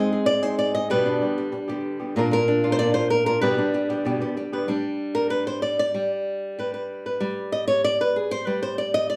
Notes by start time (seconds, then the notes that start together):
Already playing: G#3 C4 D#4 G#4 D#5
0.12 G#4
0.26 D5, muted nylon-string guitar stroke
0.42 G#3 C4 D#4 G#4 C5
0.59 D5
0.74 G#3 C4 D#4 G#4 D#5
0.90 G2 B2 D3 G3 B3 G4 B4
1.06 D4
1.20 D3 G3 B3 G4
1.38 G4
1.52 muted nylon-string guitar stroke
1.68 D3 G3 B3 G4
1.99 D3 G3 B3 G4
2.16 A#2 D3 A#3 D4 F4 A#4
2.31 A#3 D4 F4 A#4
2.47 D4, muted nylon-string guitar stroke
2.63 A#3 D4 F4
2.72 C5
2.79 A#2 D3 A#3 D4 F4 D5
2.94 A#3 D4 F4 C5
3.10 A#4, muted nylon-string guitar stroke
3.26 A#3 D4 F4 A#4
3.41 G2 B2 D3 G3 B3 G4 B4
3.57 D3 G3 B3 D4 G4
3.73 G4, muted nylon-string guitar stroke
3.89 D3 G3 B3 G4
4.05 G2 B2 D3 G3 B3 G4
4.20 D3 G3 B3 G4
4.37 G4, muted nylon-string guitar stroke
4.52 D3 G3 B3 G4 B4
4.68 G3 D4 G4
5.15 A#4
5.30 B4
5.47 C5
5.62 D5
5.79 D5
5.94 G3
6.59 G4 B4
6.74 B4
7.06 B4
7.20 G3
7.52 D#5
7.68 C#5
7.84 D5
8.01 B4
8.16 G#4
8.31 C5
8.46 G3 B4
8.63 C5
8.78 D5
8.94 D#5
9.10 D5